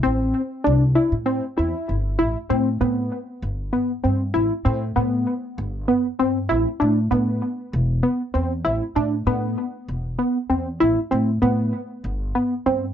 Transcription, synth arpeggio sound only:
X:1
M:7/8
L:1/8
Q:1/4=98
K:Am
V:1 name="Synth arpeggio sound"
C2 D E C E2 | E C B,2 z B, C | E C B,2 z B, C | E D B,2 z B, C |
E D B,2 z B, C | E C B,2 z B, C |]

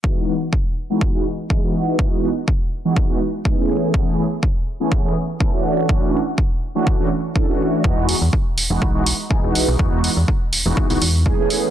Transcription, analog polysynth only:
X:1
M:4/4
L:1/16
Q:"Swing 16ths" 1/4=123
K:E
V:1 name="Analog polysynth"
[E,G,B,DF]2 [E,G,B,DF] z4 [E,G,B,DF]2 [E,G,B,DF] z2 [E,G,B,DG] [E,G,B,DF]3 | [E,G,B,DF]2 [E,G,B,DF] z4 [E,G,B,DF]2 [E,G,B,DF] z2 [E,G,B,DG] [E,A,B,CG]3 | [E,A,B,CG]2 [E,A,B,CG] z4 [E,A,B,CG]2 [E,A,B,CG] z2 [E,A,B,CA] [E,A,C=DF]3 | [E,A,C=DF]2 [E,A,CDF] z4 [E,A,CDF]2 [E,A,CDF] z2 [E,A,CDA] [E,A,CDF]3 |
[E,G,B,DF]2 [E,G,B,DF] z4 [E,G,B,DF]2 [E,G,B,DF] z2 [E,G,B,DG] [E,G,B,DF]3 | [E,G,B,DF]2 [E,G,B,DF] z4 [E,G,B,DF]2 [E,G,B,DF] z2 [E,G,B,DG] [E,A,B,CG]3 |]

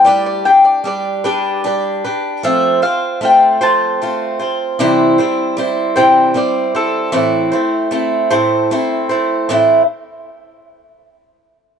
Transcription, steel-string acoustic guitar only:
X:1
M:6/8
L:1/8
Q:3/8=51
K:Am
V:1 name="Steel-string acoustic guitar"
[G,DGB] [DGB] [G,DGB] [G,DGB] [G,DGB] [DGB] | [F,A,CFc] [CFc] [A,CFc] [F,A,CFc] [A,CFc] [CFc] | [C,E,G,CEc] [G,CEc] [G,CEc] [C,E,G,CEc] [G,CEc] [G,CEc] | [A,,E,A,CEc] [A,CEc] [A,CEc] [A,,E,A,CEc] [A,CEc] [A,CEc] |
[A,,E,A,CEc] z4 z |]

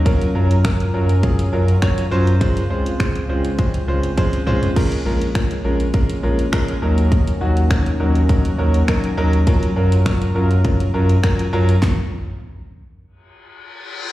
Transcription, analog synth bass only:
X:1
M:4/4
L:1/8
Q:1/4=102
K:Gblyd
V:1 name="Analog synth bass" clef=bass
E,, G,,2 G,,2 G,, z G,,- | G,, D,,2 D,,2 D,, z D,,- | D,, B,,,2 B,,,2 B,,, z E,,- | E,, E,,2 E,,2 E,, z E,,- |
E,, G,,2 G,,2 G,, z G,, | z8 |]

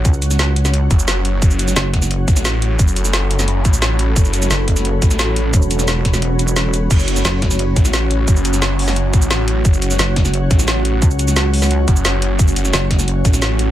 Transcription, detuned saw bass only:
X:1
M:4/4
L:1/8
Q:1/4=175
K:F#m
V:1 name="Detuned saw bass" clef=bass
z4 z F,,,3 | F,,,2 z3 A,,,3 | F,,,4- F,,, A,,,3 | F,,,2 z3 A,,,3 |
z8 | F,,,2 z3 A,,,3 | F,,,4- F,,, A,,,3 | F,,,2 z3 A,,,3 |
z4 z F,,,3 | F,,,2 z3 A,,,3 |]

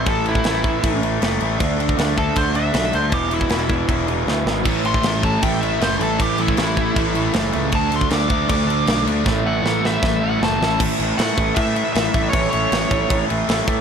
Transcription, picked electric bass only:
X:1
M:4/4
L:1/8
Q:1/4=156
K:Dlyd
V:1 name="Picked electric bass" clef=bass
A,,,2 A,,,2 A,,,2 F,,, A,,, | D,,2 D,,2 D,,2 B,,, D,, | E,,,2 E,,,2 E,,,2 D,, G,,, | A,,,2 A,,,2 A,,,2 F,,, A,,, |
A,,,2 A,,,2 A,,,2 F,,, C,, | D,,2 D,,2 D,,2 B,,, D,, | A,,,2 A,,,2 A,,,2 F,,, A,,, | A,,, A,,, A,, A,,, A,,2 A,,, A,,, |
A,,, A,,, A,,, A,,, A,,, A,,, A,,, A,, |]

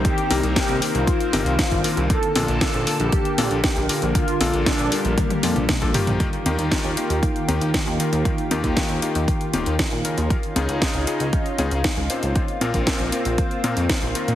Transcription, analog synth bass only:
X:1
M:4/4
L:1/16
Q:1/4=117
K:Eblyd
V:1 name="Analog synth bass" clef=bass
z2 C,, C,, z C,, z C,, z2 G,,, C,, z G,,, z C,, | z2 B,,, B,,, z B,,, z B,,, z2 B,,, B,,, z B,,, z B,,, | z2 B,,, B,,, z B,,, z B,,, z2 F,, B,,, z B,,, z B,,, | z2 E,, E,, z E,, z E,, z2 E,, E,, z E,, z E,, |
z2 E,, E,, z E,, z E,, z2 E,,, E,, z B,,, z E,, | z2 _D,, D,, z D,, z D,, z2 D,, D,, z D,, z D,, | z2 B,,, B,,, z B,,, z B,,, z2 B,, F,, z B,,, z B,, |]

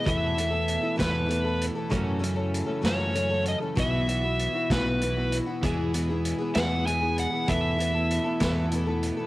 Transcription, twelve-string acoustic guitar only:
X:1
M:6/8
L:1/16
Q:3/8=65
K:Alyd
V:1 name="Twelve-string acoustic guitar"
[E,B,EA]2 [E,B,EA] [B,EA]2 [B,EA] [E,B,EA]2 [E,B,EA] [B,EA]2 [B,EA] | [F,,C,E,A,CA]2 [E,A,CA] [E,A,CA]2 [E,A,CA] [F,,C,E,A,CA]2 [E,A,CA] [E,A,CA]2 [E,A,CA] | [B,,E,B,EF]2 [E,B,EF] [B,EF]2 [B,EF] [B,,E,B,EF]2 [E,B,EF] [B,EF]2 [B,EF] | [E,B,EG]2 [E,B,EG] [B,EG]2 [B,EG] [E,B,EG]2 [E,B,EG] [B,EG]2 [B,EG] |
[E,B,EA]2 [E,B,EA] [B,EA]2 [B,EA] [E,B,EA]2 [E,B,EA] [B,EA]2 [B,EA] |]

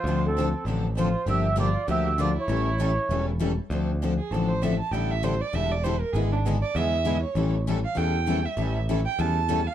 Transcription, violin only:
X:1
M:4/4
L:1/8
Q:"Swing" 1/4=197
K:Dm
V:1 name="Violin"
F C3 z2 F2 | G2 F2 G2 F E- | E4- E z3 | z3 ^G A c e a |
g e c d e d c B | ^G D z d e3 ^c- | ^c z2 f g3 e- | e z2 g a3 f |]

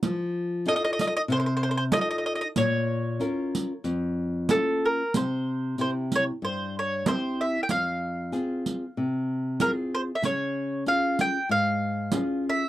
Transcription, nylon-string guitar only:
X:1
M:4/4
L:1/8
Q:1/4=95
K:Bbm
V:1 name="Nylon-string guitar"
F,2 [EF=A]2 C,2 [EFA]2 | B,,2 [DFB]2 F,,2 [B,DF]2 | [K:Cphr] C,2 [C,=EG]2 G,,2 [CEG]2 | F,,2 [CFA]2 C,2 [CFA]2 |
D,2 [DFA]2 A,,2 [DFA]2 |]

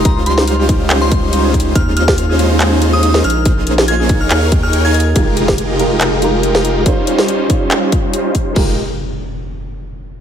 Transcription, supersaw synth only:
X:1
M:4/4
L:1/16
Q:"Swing 16ths" 1/4=141
K:Fm
V:1 name="Supersaw synth"
[G,DEFc]6 [G,DEFc]8- [G,DEFc]2 | [A,DEFc]6 [A,DEFc]8 z2 | [B,DEAc]6 [EABdf]4 [EABdg]3 [EABdf] z2 | [A,EFGB]6 [A,EFGB]8- [A,EFGB]2 |
[G,DEFc]6 [G,DEFc]8- [G,DEFc]2 | [A,EFGB]2 z12 z2 |]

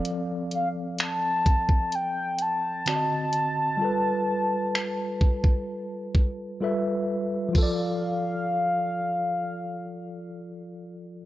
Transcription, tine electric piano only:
X:1
M:4/4
L:1/8
Q:1/4=64
K:F
V:1 name="Tine electric piano"
[F,CAd]6 [D,C^Fd_e]2 | [G,FA=B]6 [G,FABe]2 | [F,FAd]8 |]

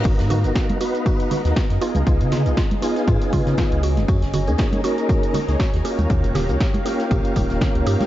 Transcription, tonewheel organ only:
X:1
M:4/4
L:1/16
Q:"Swing 16ths" 1/4=119
K:G#dor
V:1 name="Tonewheel organ"
[B,DFA]3 [B,DFA]3 [B,DFB]4- [B,DFB] [B,DFA] z2 [B,DEG]2- | [B,DEG]3 [B,DEG] z2 [B,DEG]8 z2 | z3 [A,CDG]3 [A,CDA]4- [A,CDA] [A,CDG] z2 [A,CE=G]2- | [A,CE=G]3 [A,CEG] z2 [A,CEG]8- [A,CEG]2 |]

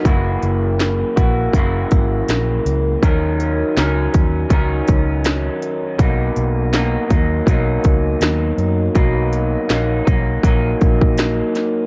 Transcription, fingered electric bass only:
X:1
M:4/4
L:1/8
Q:"Swing 16ths" 1/4=81
K:B
V:1 name="Fingered electric bass" clef=bass
F,,, F,,,2 A,,, F,,, G,,, A,,, C,, | D,,2 C,, D,, C,, C,,2 z | B,,, B,,,2 D,, B,,, C,, D,, F,, | B,,,2 A,,, B,,, A,,, A,,,2 z |]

